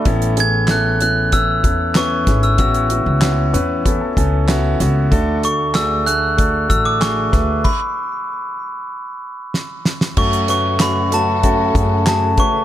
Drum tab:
CC |----------------|----------------|----------------|x---------------|
HH |xxx-x-x-x-x-x-xx|xxx-x-x-x-x-x-x-|x-x-x-x-x-x-x-x-|----------------|
CP |----x-------x---|----x-------x---|----x-------x---|----------------|
SD |----o-------o-o-|----o-------o-o-|----o-------o-o-|------------o-oo|
BD |o-------o-o---o-|o-------o-o-----|o-------o-o---o-|o---------------|

CC |x---------------|
HH |-xx-x-x-x-x-x-x-|
CP |----x-------x---|
SD |----o-------o---|
BD |o-------o-o---o-|